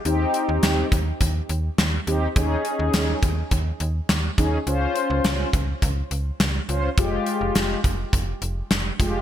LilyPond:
<<
  \new Staff \with { instrumentName = "Analog polysynth" } { \time 4/4 \key f \minor \tempo 4 = 104 <c' ees' g'>4. r2 <c' ees' g'>8 | <des' ees' aes'>4. r2 <des' ees' aes'>8 | <des' f' c''>4. r2 <des' f' c''>8 | <aes f' g'>4. r2 <aes f' g'>8 | }
  \new Staff \with { instrumentName = "FM bass" } { \clef bass \time 4/4 \key f \minor ees,8 r16 ees,16 ees,8 ees,8 ees,8 ees,8 ees,8 ees,8 | ees,8 r16 ees,16 ees,8 ees,8 ees,8 ees,8 ees,8 ees,8 | des,8 r16 des,16 des,8 des,8 des,8 des,8 des,8 des,8 | f,,8 r16 f,,16 f,,8 f,,8 f,,8 f,,8 f,,8 f,,8 | }
  \new DrumStaff \with { instrumentName = "Drums" } \drummode { \time 4/4 hh8 hh8 <hh sn>8 <hh bd>8 <hh bd>8 hh8 <hh sn>8 hh8 | <hh bd>8 hh8 <hh sn>8 <hh bd>8 <hh bd>8 hh8 <hh sn>8 <hh bd>8 | hh8 hh8 <hh sn>8 <hh bd>8 <hh bd>8 hh8 <hh sn>8 hh8 | <hh bd>8 hh8 <hh sn>8 <hh bd>8 <hh bd>8 hh8 <hh sn>8 <hh bd>8 | }
>>